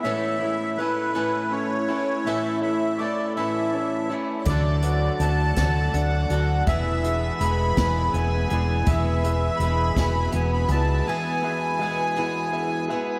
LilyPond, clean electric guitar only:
\new Staff \with { instrumentName = "Clean electric guitar" } { \time 6/8 \key a \major \tempo 4. = 54 a,8 e'8 a8 e'8 cis'8 e'8 | a,8 e'8 a8 e'8 cis'8 e'8 | d8 fis'8 a8 fis'8 d'8 fis'8 | e,8 gis'8 gis8 gis'8 b8 gis'8 |
e,8 gis'8 gis8 gis'8 b8 gis'8 | e,8 gis'8 gis8 gis'8 b8 gis'8 | }